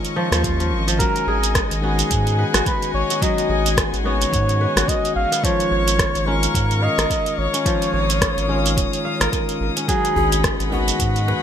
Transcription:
Already playing: tine electric piano D#3 G#3 C#4 F4, kora F3 C#4, string section A#4 C#5 D#5 C#6
0.05 closed hi-hat, shaker
0.16 kora F3
0.32 analog synth bass D#2, kora F3, cross-stick, closed hi-hat, shaker
0.44 kora F4, kick, closed hi-hat, shaker
0.60 kora F3, closed hi-hat, shaker
0.72 analog synth bass G#1
0.88 kora F3, closed hi-hat, shaker
0.97 tine electric piano D#3 G#3 C#4, kora F#3, string section G#4 F#5 G#5, muted trumpet A#4, kick, closed hi-hat, shaker
1.01 tine electric piano F#4
1.16 closed hi-hat, shaker
1.27 analog synth bass G#1, kora G#4
1.43 closed hi-hat, shaker
1.55 kick, cross-stick, closed hi-hat, shaker
1.71 analog synth bass G#1, closed hi-hat, shaker
1.81 tine electric piano D#3 G#3 C#4 F#4, kora B3, muted trumpet G#4
1.99 closed hi-hat, shaker
2.11 analog synth bass G#2, kick, closed hi-hat, shaker
2.27 closed hi-hat, shaker
2.39 kora B4
2.54 analog synth bass G#1, kora F#4, cross-stick, closed hi-hat, shaker
2.66 kora F#4, muted trumpet B4, kick, closed hi-hat, shaker
2.82 closed hi-hat, shaker
2.94 analog synth bass G#1, muted trumpet C#5
3.10 kora B3, closed hi-hat, shaker
3.20 tine electric piano D#3 G#3 C#4 F#4, kora F#3, muted trumpet D#5, kick, closed hi-hat, shaker
3.38 closed hi-hat, shaker
3.49 analog synth bass G#1, kora G#4
3.66 closed hi-hat, shaker
3.77 kick, cross-stick, closed hi-hat, shaker
3.93 analog synth bass G#1, closed hi-hat, shaker
4.03 tine electric piano D#3 G#3 C#4, kora B3, muted trumpet C#5
4.07 tine electric piano F#4
4.22 closed hi-hat, shaker
4.33 analog synth bass G#2, kick, closed hi-hat, shaker
4.49 closed hi-hat, shaker
4.61 kora B4
4.76 analog synth bass G#1, kora F#4, cross-stick, closed hi-hat, shaker
4.88 kora F#4, muted trumpet D#5, kick, closed hi-hat, shaker
5.05 closed hi-hat, shaker
5.16 analog synth bass G#1, muted trumpet F5
5.32 kora B3, closed hi-hat, shaker
5.42 tine electric piano D#3 G#3 C#4 F4, kora F3, string section A#4 C#5 F5 C#6, muted trumpet C#5, kick, closed hi-hat, shaker
5.60 closed hi-hat, shaker
5.71 analog synth bass G#1, kora C#5
5.88 closed hi-hat, shaker
5.99 kick, cross-stick, closed hi-hat, shaker
6.15 analog synth bass G#1, closed hi-hat, shaker
6.25 tine electric piano D#3 G#3 C#4, kora C#4, muted trumpet A#4
6.29 tine electric piano F4
6.43 closed hi-hat, shaker
6.54 analog synth bass G#2, kick, closed hi-hat, shaker
6.71 closed hi-hat, shaker
6.83 muted trumpet D#5, kora F5
6.98 analog synth bass G#1, kora A#4, cross-stick, closed hi-hat, shaker
7.10 kora A#4, kick, closed hi-hat, shaker
7.26 closed hi-hat, shaker
7.38 analog synth bass G#1, muted trumpet C#5
7.54 kora C#4, closed hi-hat, shaker
7.64 tine electric piano D#3 G#3 C#4 F4, kora F3, string section D#6, kick, closed hi-hat, shaker
7.82 closed hi-hat, shaker
7.93 analog synth bass G#1, kora C#5
8.10 closed hi-hat, shaker
8.21 kick, cross-stick, closed hi-hat, shaker
8.37 analog synth bass G#1, closed hi-hat, shaker
8.47 tine electric piano D#3 G#3 C#4, kora C#4
8.51 tine electric piano F4
8.66 closed hi-hat, shaker
8.77 analog synth bass D#1, kick, closed hi-hat, shaker
8.93 closed hi-hat, shaker
9.05 kora F5
9.19 analog synth bass G#1, tine electric piano D#3 G#3 C#4 F4, kora A#4, cross-stick, closed hi-hat, shaker
9.33 kora A#4, kick, closed hi-hat, shaker
9.49 closed hi-hat, shaker
9.61 analog synth bass G#1
9.76 kora C#4, closed hi-hat, shaker
9.86 tine electric piano D#3 G#3 C#4, kora F#3, muted trumpet G#4, string section G#4 D#5 F#5 B5, kick, closed hi-hat, shaker
9.90 tine electric piano F#4
10.05 closed hi-hat, shaker
10.16 analog synth bass G#1, kora G#4, djembe bass
10.32 closed hi-hat, djembe tone, shaker
10.44 kick, cross-stick, closed hi-hat, shaker
10.60 analog synth bass G#1, closed hi-hat, shaker
10.67 tine electric piano D#3, muted trumpet G#4
10.71 tine electric piano G#3 C#4 F#4, kora B3, muted trumpet F#4, djembe tone
10.88 closed hi-hat, shaker
11.00 analog synth bass G#2, kick, closed hi-hat, shaker
11.16 closed hi-hat, shaker
11.28 kora B4, djembe slap, djembe tone

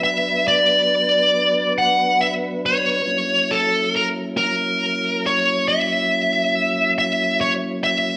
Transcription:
Already playing: tonewheel organ F#3 B3 D4 B4
0.04 lead electric guitar E5
0.48 lead electric guitar D5
1.78 lead electric guitar F#5
2.21 lead electric guitar E5
2.66 lead electric guitar C#5
3.05 tonewheel organ F#3 A#3 C#4 E4
3.51 lead electric guitar A4
3.96 lead electric guitar A#4
4.37 lead electric guitar A#4
5.26 lead electric guitar C#5
5.68 lead electric guitar E5
6.98 lead electric guitar E5
7.41 lead electric guitar C#5
7.84 lead electric guitar E5

